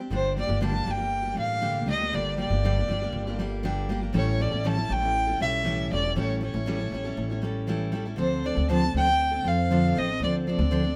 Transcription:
Already playing: G4
0.00 C4 D4
0.10 G1 G2 D3 G3 A#3 D4 G4
0.15 C5
0.37 G3 A#3 D4 G4 D5
0.47 G1 G3 A#3 D4 G4
0.60 G2 D3 G3 A#3 D4 G4
0.65 A5
0.71 G3 A#3 D4 G4
0.85 G1 G3 A#3 D4 G4
0.91 G5
0.97 G3 A#3 D4 G4
1.22 G3 A#3 D4 G4
1.34 A1 G3 A#3 D4
1.38 G4 F5
1.60 G2 D3 G3 A#3 D4 G4
1.86 D2 G3 A#3 D4 G4
1.90 D#5
2.00 G3 A#3 D4 G4
2.12 G1 G2 D3 G3 A#3 D4 G4 D5
2.37 G3 A#3 D4 G4 D5
2.50 G1 G3 A#3 D4 G4
2.63 G2 D3 G3 A#3 D4 G4
2.78 G3 A#3 D4 G4
2.88 G1 G3 A#3 D4 G4
3.02 G3 A#3 D4 G4
3.13 G1
3.27 G3 A#3 D4 G4
3.39 G3 A#3 D4 G4
3.63 G2 D3 G3 A#3 D4 G4
3.89 G3 A#3 D4 G4
4.01 G3 A#3 D4 G4
4.13 A1 A2 E3 G3 C#4 E4 A4
4.17 C#5
4.40 G3 C#4 E4 A4 D5
4.51 A1 G3 C#4 E4 A4
4.64 A2 E3 G3 C#4 E4 A4 A5
4.76 G3 C#4 E4 A4
4.88 A1 G3 C#4 E4 A4 G5
5.02 G3 C#4 E4 A4
5.27 G3 C#4 E4 A4
5.40 B1 G3 C#4 E4 A4 E5
5.64 A2 E3 G3 C#4 E4 A4
5.91 E1 G3 C#4 E4 A4 D5
6.03 G3 C#4 E4 A4
6.16 A1 A2 E3 G3 C#4 E4 A4 C#5
6.41 G3 C#4 E4 A4 C#5
6.54 A1 G3 C#4 E4 A4
6.66 A2 E3 G3 C#4 E4 A4
6.79 G3 C#4 E4 A4
6.91 A1 G3 C#4 E4 A4
7.04 G3 C#4 E4 A4
7.17 A1
7.30 G3 C#4 E4 A4
7.42 G3 C#4 E4 A4
7.67 A2 E3 G3 C#4 E4 A4
7.92 G3 C#4 E4 A4
8.05 G3 C#4 E4 A4
8.16 D2 D3 F3 C4 D4 A4
8.20 C5
8.43 F3 C4 D4 A4 D5
8.55 D2 C4 D4 A4
8.69 D3 F3 C4 D4 A4 A5
8.82 C4 D4 A4
8.94 D2 F3 C4 D4 A4 G5
9.07 C4 D4 A4
9.32 C4 D4 A4
9.44 F2 F3 C4 D4 A4
9.48 F5
9.71 D3 F3 C4 D4 A4
9.96 A1 F3 C4 D4 A4 D#5
10.08 C4 D4 A4
10.20 D2 D3 F3 C4 D4 D5
10.24 A4
10.47 F3 C4 D4 A4 D5
10.58 D2 C4 D4 A4
10.71 D3 F3 C4 D4 A4
10.83 C4 D4 A4

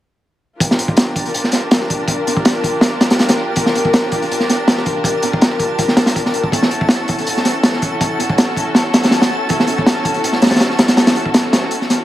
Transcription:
0.60 D4 F4 G4 A#4 A5, kick, closed hi-hat
0.71 snare
0.79 closed hi-hat
0.88 kick
0.97 snare, closed hi-hat
1.16 kick, closed hi-hat
1.26 closed hi-hat
1.34 closed hi-hat
1.44 snare
1.52 snare, closed hi-hat
1.71 snare, closed hi-hat
1.81 snare
1.90 kick, closed hi-hat
2.08 kick, closed hi-hat
2.27 closed hi-hat
2.37 kick
2.45 snare, closed hi-hat
2.64 kick, closed hi-hat
2.81 snare, closed hi-hat
3.01 snare, closed hi-hat
3.10 snare, closed hi-hat
3.19 snare, closed hi-hat
3.29 snare, closed hi-hat
3.56 kick, closed hi-hat
3.66 snare
3.75 closed hi-hat
3.85 kick
3.93 snare, closed hi-hat
4.12 kick, closed hi-hat
4.22 closed hi-hat
4.31 closed hi-hat
4.40 snare
4.49 snare, closed hi-hat
4.68 snare, closed hi-hat
4.77 snare
4.86 kick, closed hi-hat
5.04 kick, closed hi-hat
5.22 closed hi-hat
5.33 kick
5.41 snare, closed hi-hat
5.59 kick, closed hi-hat
5.79 kick, closed hi-hat
5.88 snare
5.97 snare, closed hi-hat
6.06 snare, closed hi-hat
6.16 kick, closed hi-hat
6.26 snare
6.34 closed hi-hat
6.44 kick
6.52 C#4 E4 F#4 A4, kick, closed hi-hat
6.62 snare
6.71 closed hi-hat
6.81 kick
6.89 snare, closed hi-hat
7.08 kick, closed hi-hat
7.18 closed hi-hat
7.27 closed hi-hat
7.37 snare
7.45 snare, closed hi-hat
7.63 snare, closed hi-hat
7.73 snare
7.82 kick, closed hi-hat
8.01 kick, closed hi-hat
8.20 closed hi-hat
8.30 kick
8.38 snare, closed hi-hat
8.57 kick, closed hi-hat
8.75 snare, closed hi-hat
8.94 snare, closed hi-hat
9.03 snare, closed hi-hat
9.11 snare, closed hi-hat
9.22 snare, closed hi-hat
9.49 kick, closed hi-hat
9.60 snare
9.67 closed hi-hat
9.78 kick
9.86 snare, closed hi-hat
10.05 kick, closed hi-hat
10.14 closed hi-hat
10.24 closed hi-hat
10.32 snare
10.42 snare, closed hi-hat
10.46 snare, closed hi-hat
10.51 snare, closed hi-hat
10.56 snare, closed hi-hat
10.60 snare, closed hi-hat
10.70 snare
10.79 snare, closed hi-hat
10.88 snare, closed hi-hat
10.97 snare, closed hi-hat
11.07 snare, closed hi-hat
11.16 closed hi-hat
11.26 kick
11.34 snare, closed hi-hat
11.53 snare, closed hi-hat
11.71 closed hi-hat
11.81 snare
11.90 snare, closed hi-hat

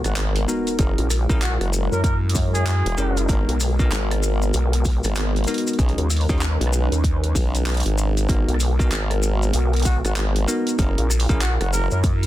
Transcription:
Already playing: G#3 B3 F#4 A#4, sub drop
0.04 G#1 F#4, cross-stick, closed hi-hat, maracas
0.16 clap, closed hi-hat, maracas
0.36 closed hi-hat
0.48 B3 D#4 F#4 A#4, maracas
0.67 closed hi-hat, maracas
0.79 F#1 C#4 E4 G#4 A#4, kick, closed hi-hat, maracas
0.98 A#1, closed hi-hat
1.10 cross-stick, open hi-hat, maracas
1.29 A#1 C#4 E4 G#4 A#4, kick, closed hi-hat, maracas
1.41 F#4, clap, closed hi-hat, maracas
1.60 F#1 F#4, cross-stick, closed hi-hat
1.73 maracas
1.92 F#2 A#4, maracas
2.03 A#4, kick, closed hi-hat, maracas
2.29 closed hi-hat
2.35 kick, open hi-hat, maracas
2.54 G#4, closed hi-hat, maracas
2.67 clap, closed hi-hat, maracas
2.86 E1, closed hi-hat
2.98 F#1 C#4 E4 G#4 A#4, maracas
3.17 closed hi-hat, maracas
3.28 G#1 B3 D#4 F#4 A#4, kick, closed hi-hat, maracas
3.48 B1, closed hi-hat
3.60 cross-stick, open hi-hat, maracas
3.79 B3 D#4 F#4 A#4, kick, closed hi-hat, maracas
3.91 G#1, clap, closed hi-hat, maracas
4.11 cross-stick, closed hi-hat
4.23 maracas
4.42 maracas
4.54 B1, closed hi-hat, maracas
4.73 closed hi-hat
4.85 kick, open hi-hat, maracas
5.04 G#1, cross-stick, closed hi-hat, maracas
5.16 clap, closed hi-hat, maracas
5.36 closed hi-hat
5.44 B3 D#4 F#4 A#4, closed hi-hat, maracas
5.48 closed hi-hat
5.54 closed hi-hat
5.58 closed hi-hat
5.67 closed hi-hat, maracas
5.73 closed hi-hat
5.79 B1 C#4 D#4 F#4 G#4 B4, kick, closed hi-hat, maracas
5.89 closed hi-hat
5.98 D#2, closed hi-hat
6.10 cross-stick, open hi-hat, maracas
6.17 open hi-hat
6.21 open hi-hat
6.29 D#2 C#4 D#4 F#4 G#4, kick, closed hi-hat, open hi-hat, maracas
6.38 clap, closed hi-hat, open hi-hat, maracas
6.61 B1, closed hi-hat
6.67 cross-stick
6.73 maracas
6.92 D#2, closed hi-hat, maracas
7.04 kick, closed hi-hat, maracas
7.24 closed hi-hat
7.35 B1, kick, open hi-hat, maracas
7.55 closed hi-hat, maracas
7.66 clap, closed hi-hat, maracas
7.69 closed hi-hat
7.72 closed hi-hat
7.74 closed hi-hat
7.77 closed hi-hat
7.80 closed hi-hat
7.83 G#1, closed hi-hat
7.86 closed hi-hat
7.98 maracas
8.17 closed hi-hat, maracas
8.28 G#1 B3 D#4 F#4 A#4, kick, closed hi-hat, maracas
8.48 B1, closed hi-hat
8.54 cross-stick
8.60 open hi-hat, maracas
8.79 B3 D#4 F#4 A#4, kick, closed hi-hat, maracas
8.92 G#1, clap, closed hi-hat, maracas
9.11 cross-stick, closed hi-hat
9.23 maracas
9.42 maracas
9.53 B1, closed hi-hat, maracas
9.73 closed hi-hat
9.76 closed hi-hat
9.80 closed hi-hat
9.82 F#4, kick, closed hi-hat, open hi-hat, maracas
10.05 G#1 F#4, cross-stick, closed hi-hat, maracas
10.16 clap, closed hi-hat, maracas
10.36 closed hi-hat
10.48 B3 D#4 F#4 A#4, maracas
10.67 closed hi-hat, maracas
10.79 F#1 C#4 E4 F#4 G#4 A#4, kick, closed hi-hat, maracas
10.98 A#1, closed hi-hat
11.10 cross-stick, maracas
11.20 open hi-hat
11.29 A#1 C#4 E4 G#4 A#4, kick, closed hi-hat, maracas
11.41 F#4, clap, closed hi-hat, maracas
11.61 F#1 F#4, cross-stick, closed hi-hat
11.72 A#4, maracas
11.91 F#2 A#4, maracas
12.04 kick, closed hi-hat, maracas
12.23 closed hi-hat

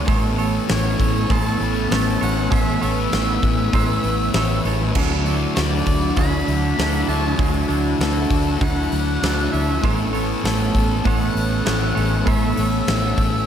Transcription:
0.06 A1 A2 E3 A3 B3 C#4 E4 A4 C#5, kick, open hi-hat
0.36 E3 A3 E4 A4 C#5, open hi-hat
0.68 A1 A2 E3 A3 C#5, snare, open hi-hat
0.97 A1 E3 A3, kick, open hi-hat
1.29 A1 A2 E3 A3 B3 E4 A4 C#5 A5, kick, open hi-hat
1.59 A1 E3 A3, open hi-hat
1.89 A1 A2 E3 A3 B3 E4 A4 C#5, snare, open hi-hat
2.20 A1 E3 A3 E4 A4 C#5 F#5, open hi-hat
2.50 A1 A2 E3 A3 B3 E4 A4 B4 C#5 E5, kick, open hi-hat
2.81 A1 E3 A3 E4 A4 C#5 E5, open hi-hat
3.11 A1 A2 E3 A3, snare, open hi-hat
3.42 A1 E3 A3, kick, open hi-hat
3.72 A1 A2 E3 A3 B3 E4 A4 C#5, kick, open hi-hat
4.03 A1 E3 A3, open hi-hat
4.33 A1 A2 E3 A3 B3 E4 A4 C#5, snare, open hi-hat
4.64 A1 E3 A3 E4 A4 C#5, open hi-hat
4.92 D2 D3 F#3 A3 D4 E4 F#4, kick, crash
4.96 D4 E4 A4
5.25 A3 D4 E4 A4, open hi-hat
5.29 D4
5.55 D2 D3 A3 D4 D5, snare, open hi-hat
5.86 D2 A3 D4, kick, open hi-hat
6.16 D2 D3 F#3 A3 D4 E4 A4 B5, kick, open hi-hat
6.47 D2 A3 D4, open hi-hat
6.77 D2 D3 F#3 A3 D4 E4 A4, snare, open hi-hat
7.07 D2 A3 D4 E4 A4 A5, open hi-hat
7.37 D2 D3 F#3 A3 D4 E4 A4, kick, open hi-hat
7.68 D2 A3 D4 E4 A4, open hi-hat
7.98 D2 D3 A3 D4 A4, snare, open hi-hat
8.29 D2 A3 D4, kick, open hi-hat
8.59 D2 D3 F#3 A3 D4 E4 A4 F#5, kick, open hi-hat
8.90 D2 A3 D4, open hi-hat
9.21 D2 D3 F#3 A3 D4 E4 A4, snare, open hi-hat
9.52 D2 A3 D4 E4 A4 E5, open hi-hat
9.82 A1 A2 E3 A3 B3 C#4 E4 A4 C#5, kick, open hi-hat
10.13 E3 A3 E4 A4 C#5, open hi-hat
10.43 A1 A2 E3 A3 A4, snare, open hi-hat
10.74 A1 E3 A3, kick, open hi-hat
11.05 A1 A2 E3 A3 B3 E4 A4 C#5 F#5, kick, open hi-hat
11.35 A1 E3 A3, open hi-hat
11.65 A1 A2 E3 A3 B3 E4 A4 C#5, snare, open hi-hat
11.95 A1 E3 A3 E4 A4 C#5, open hi-hat
12.26 A1 A2 E3 A3 B3 E4 A4 C#5 E5, kick, open hi-hat
12.56 A1 E3 A3 E4 A4 C#5, open hi-hat
12.87 A1 A2 E3 A3, snare, open hi-hat
13.17 A1 E3 A3, kick, open hi-hat

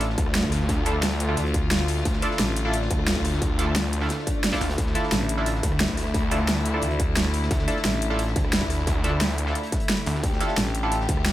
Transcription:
Already playing: A1 D3 A3 F4
0.00 closed hi-hat
0.10 snare
0.18 D2, kick, closed hi-hat
0.26 cross-stick
0.35 snare, closed hi-hat
0.43 kick
0.52 D2, cross-stick, snare, closed hi-hat, open hi-hat
0.60 snare
0.69 kick, closed hi-hat
0.78 cross-stick
0.85 D4 E4 F4 A4, closed hi-hat
0.95 cross-stick
1.03 snare, closed hi-hat, open hi-hat
1.20 closed hi-hat
1.29 D4 E4 F4 A4, cross-stick
1.37 D2, closed hi-hat
1.46 closed hi-hat
1.54 kick, closed hi-hat
1.71 snare, closed hi-hat
1.80 cross-stick, snare
1.88 closed hi-hat, open hi-hat
1.97 snare
2.05 D2, kick, closed hi-hat
2.13 snare
2.22 D4 E4 F4 A4, closed hi-hat
2.31 snare
2.39 A1, snare, closed hi-hat
2.48 snare
2.56 closed hi-hat
2.65 D4 E4 F4 A4
2.73 closed hi-hat
2.82 snare
2.90 D2, kick, closed hi-hat
2.99 cross-stick
3.07 snare, closed hi-hat
3.16 kick
3.24 D2, cross-stick, snare, closed hi-hat, open hi-hat
3.33 snare
3.42 kick, closed hi-hat
3.50 cross-stick
3.59 D4 E4 F4 A4, closed hi-hat
3.67 cross-stick
3.75 snare, closed hi-hat, open hi-hat
3.93 closed hi-hat
4.01 D4 E4 F4 A4, cross-stick
4.09 snare, closed hi-hat, swell
4.18 snare
4.27 kick, closed hi-hat
4.44 snare, closed hi-hat
4.52 D4 E4 F4 A4, kick, cross-stick, snare, closed hi-hat
4.61 D2, snare, closed hi-hat, open hi-hat
4.69 snare, closed hi-hat
4.78 D2 E4, kick, closed hi-hat
4.87 snare
4.95 D4 E4 F4 A4, closed hi-hat
5.03 snare
5.12 A1, snare, closed hi-hat
5.20 snare
5.29 closed hi-hat
5.38 D4 E4 F4 A4
5.46 closed hi-hat
5.55 snare
5.63 D2, kick, closed hi-hat
5.72 cross-stick
5.80 snare, closed hi-hat
5.89 kick
5.97 D2, cross-stick, snare, closed hi-hat, open hi-hat
6.05 snare
6.14 kick, closed hi-hat
6.23 cross-stick
6.31 D4 E4 F4 A4, closed hi-hat
6.40 cross-stick
6.48 snare, closed hi-hat, open hi-hat
6.65 closed hi-hat
6.74 D4 E4 F4 A4, cross-stick
6.82 D2, closed hi-hat
6.91 closed hi-hat
7.00 kick, closed hi-hat
7.16 snare, closed hi-hat
7.24 cross-stick, snare
7.34 closed hi-hat, open hi-hat
7.42 snare
7.51 D2, kick, closed hi-hat
7.59 snare
7.68 D4 E4 F4 A4, closed hi-hat
7.76 snare
7.85 A1, snare, closed hi-hat
7.94 snare
8.02 closed hi-hat
8.10 D4 E4 F4 A4
8.19 closed hi-hat
8.27 snare
8.36 D2, kick, closed hi-hat
8.45 cross-stick
8.53 snare, closed hi-hat
8.62 kick
8.70 D2, cross-stick, snare, closed hi-hat, open hi-hat
8.78 snare
8.87 kick, closed hi-hat
8.96 cross-stick
9.04 D4 E4 F4 A4, closed hi-hat
9.13 cross-stick
9.21 snare, closed hi-hat, open hi-hat
9.38 closed hi-hat
9.47 D4 E4 F4 A4, cross-stick, snare
9.55 closed hi-hat
9.63 closed hi-hat
9.72 kick, snare, closed hi-hat
9.80 closed hi-hat
9.89 snare, closed hi-hat
9.98 cross-stick, snare
10.06 D2, closed hi-hat, open hi-hat
10.15 snare
10.23 D2 G4, kick, closed hi-hat
10.32 snare
10.40 D4 E4 F4 A4, closed hi-hat
10.48 snare
10.57 A1, snare, closed hi-hat
10.66 snare
10.75 closed hi-hat
10.83 D4 E4 F4 A4
10.92 closed hi-hat
11.01 snare
11.08 D2, kick, closed hi-hat
11.17 cross-stick
11.25 snare, closed hi-hat

